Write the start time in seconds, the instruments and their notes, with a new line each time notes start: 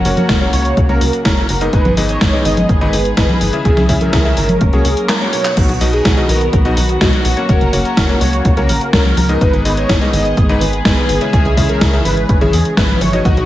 Already playing: string section C#3 F#3 A#3 F#4, analog synth lead A#4
0.05 analog synth bass F#1, electric grand piano A#3 C#4 F#4 C#5, open hi-hat
0.17 analog synth lead A#4, closed hi-hat, high conga
0.29 analog synth bass F#1, kick, snare, closed hi-hat
0.41 electric grand piano A#3 C#4 F#4 C#5, closed hi-hat
0.53 analog synth bass C#2, analog synth lead C#5, open hi-hat
0.65 closed hi-hat
0.77 analog synth bass C#2, kick, closed hi-hat
0.89 analog synth bass C#2, electric grand piano A#3 C#4 F#4 C#5, analog synth lead A#4, closed hi-hat
1.01 analog synth bass C#2, open hi-hat
1.13 closed hi-hat
1.25 analog synth bass F#1, electric grand piano A#3 C#4 F#4 C#5, analog synth lead A#4, kick, snare, closed hi-hat
1.37 closed hi-hat
1.49 analog synth bass F#1, analog synth lead A#4, open hi-hat
1.61 electric grand piano G#2 B3 D#4 G#4 D#5, closed hi-hat
1.73 analog synth bass G#1, string section D#3 G#3 B3 G#4, analog synth lead B4, kick, closed hi-hat
1.85 analog synth bass G#1, closed hi-hat, high conga
1.97 analog synth bass G#1, electric grand piano G#2 B3 D#4 G#4 D#5, open hi-hat
2.09 analog synth lead C#5, closed hi-hat
2.21 analog synth bass G#1, kick, snare, closed hi-hat
2.33 electric grand piano G#2 B3 D#4 G#4 D#5, closed hi-hat
2.45 analog synth bass G#1, analog synth lead D#5, open hi-hat
2.57 closed hi-hat, high conga
2.69 analog synth bass G#1, kick, closed hi-hat
2.81 analog synth bass G#1, electric grand piano G#2 B3 D#4 G#4 D#5, analog synth lead B4, closed hi-hat
2.93 analog synth bass G#1, open hi-hat
3.05 closed hi-hat
3.17 analog synth bass G#1, electric grand piano G#2 B3 D#4 G#4 D#5, analog synth lead B4, kick, snare, closed hi-hat
3.29 closed hi-hat, high conga
3.41 analog synth bass G#1, analog synth lead B4, open hi-hat
3.53 electric grand piano C#3 C#4 E4 G#4 E5, closed hi-hat
3.65 analog synth bass C#2, string section E3 G#3 C#4, analog synth lead G#4, kick, closed hi-hat
3.77 analog synth bass C#2, snare, closed hi-hat, high conga
3.89 analog synth bass C#2, electric grand piano C#3 C#4 E4 G#4 E5, kick, open hi-hat
4.01 analog synth lead A#4, closed hi-hat, high conga
4.13 analog synth bass C#2, kick, snare, closed hi-hat
4.25 electric grand piano C#3 C#4 E4 G#4 E5, closed hi-hat
4.37 analog synth bass G#1, analog synth lead A#4, open hi-hat
4.49 closed hi-hat, high conga
4.61 analog synth bass F#1, string section F#3 A#3 A#4, kick, closed hi-hat
4.73 analog synth bass C#2, electric grand piano A#3 C#4 F#4 C#5, analog synth lead G#4, closed hi-hat
4.85 analog synth bass C#2, open hi-hat
4.97 closed hi-hat
5.09 analog synth lead A#4, snare, clap, closed hi-hat
5.21 electric grand piano A#3 C#4 F#4 C#5, closed hi-hat
5.33 electric grand piano B2 B3 D#4 F#4 C#5, analog synth lead C#5, open hi-hat
5.45 clap, closed hi-hat
5.57 analog synth bass B1, string section D#3 F#3 B3 F#4, analog synth lead F#4, kick, closed hi-hat, crash
5.69 analog synth bass B1, closed hi-hat
5.81 analog synth bass B1, electric grand piano B2 B3 D#4 F#4 D#5, open hi-hat
5.93 analog synth lead G#4, closed hi-hat
6.05 analog synth bass B1, kick, snare, closed hi-hat
6.17 electric grand piano B2 B3 D#4 F#4 D#5, closed hi-hat
6.29 analog synth bass B1, analog synth lead A#4, open hi-hat
6.41 closed hi-hat
6.53 analog synth bass B1, kick, closed hi-hat
6.65 analog synth bass B1, electric grand piano B2 B3 D#4 F#4 D#5, analog synth lead F#4, closed hi-hat
6.77 analog synth bass B1, open hi-hat
6.89 closed hi-hat
7.01 analog synth bass B1, electric grand piano B2 B3 D#4 F#4 D#5, analog synth lead F#4, kick, snare, closed hi-hat
7.13 closed hi-hat
7.25 analog synth bass B1, analog synth lead F#4, open hi-hat
7.37 electric grand piano A#3 C#4 F#4 C#5, closed hi-hat
7.49 analog synth bass F#1, string section C#3 A#3, analog synth lead A#4, kick, closed hi-hat
7.61 analog synth bass F#1, closed hi-hat
7.73 analog synth bass F#1, electric grand piano A#3 C#4 F#4 C#5, open hi-hat
7.85 analog synth lead A#4, closed hi-hat
7.97 analog synth bass F#1, kick, snare, closed hi-hat
8.09 electric grand piano A#3 C#4 F#4 C#5, closed hi-hat
8.21 analog synth bass C#2, analog synth lead C#5, open hi-hat
8.33 closed hi-hat
8.45 analog synth bass C#2, kick, closed hi-hat
8.57 analog synth bass C#2, electric grand piano A#3 C#4 F#4 C#5, analog synth lead A#4, closed hi-hat
8.69 analog synth bass A#1, open hi-hat
8.81 closed hi-hat
8.93 analog synth bass C#2, electric grand piano A#3 C#4 F#4 C#5, analog synth lead A#4, kick, snare, closed hi-hat
9.05 closed hi-hat, high conga
9.17 analog synth bass C#2, analog synth lead A#4, open hi-hat, high conga
9.29 electric grand piano G#2 B3 D#4 G#4 D#5, closed hi-hat
9.41 analog synth bass G#1, string section D#3 G#3 B3 G#4, analog synth lead B4, kick, closed hi-hat
9.53 analog synth bass G#1, closed hi-hat
9.65 analog synth bass G#1, electric grand piano G#2 B3 D#4 G#4 D#5, open hi-hat
9.77 analog synth lead C#5, closed hi-hat
9.89 analog synth bass G#1, kick, snare, closed hi-hat
10.01 electric grand piano G#2 B3 D#4 G#4 D#5, closed hi-hat
10.13 analog synth bass G#1, analog synth lead D#5, open hi-hat
10.25 closed hi-hat
10.37 analog synth bass G#1, kick, closed hi-hat
10.49 analog synth bass G#1, electric grand piano G#2 B3 D#4 G#4 D#5, analog synth lead B4, closed hi-hat
10.61 analog synth bass G#1, open hi-hat
10.73 closed hi-hat
10.85 analog synth bass G#1, electric grand piano G#2 B3 D#4 G#4 D#5, analog synth lead B4, kick, snare, closed hi-hat
10.97 closed hi-hat
11.09 analog synth bass G#1, analog synth lead B4, open hi-hat
11.21 electric grand piano C#3 C#4 E4 G#4 E5, closed hi-hat
11.33 analog synth bass C#2, string section E3 C#4, analog synth lead G#4, kick, closed hi-hat
11.45 analog synth bass C#2, closed hi-hat
11.57 analog synth bass C#2, electric grand piano C#3 C#4 E4 G#4 E5, kick, open hi-hat
11.69 analog synth lead A#4, closed hi-hat
11.81 analog synth bass C#2, kick, snare, closed hi-hat
11.93 electric grand piano C#3 C#4 E4 G#4 E5, closed hi-hat
12.05 analog synth bass G#1, analog synth lead B4, open hi-hat
12.17 closed hi-hat
12.29 analog synth bass G#1, kick, closed hi-hat
12.41 analog synth bass G#1, electric grand piano C#3 C#4 E4 G#4 E5, analog synth lead G#4, closed hi-hat
12.53 analog synth bass E2, open hi-hat
12.65 closed hi-hat
12.77 analog synth bass G#1, electric grand piano C#3 C#4 E4 G#4 E5, analog synth lead B4, kick, snare, closed hi-hat
12.89 closed hi-hat, high conga
13.01 analog synth bass G#1, analog synth lead C#5, open hi-hat, high conga
13.13 electric grand piano B2 B3 D#4 F#4 D#5, closed hi-hat
13.25 analog synth bass B1, string section D#3 F#3 B3 F#4, analog synth lead F#4, kick, closed hi-hat
13.37 analog synth bass B1, closed hi-hat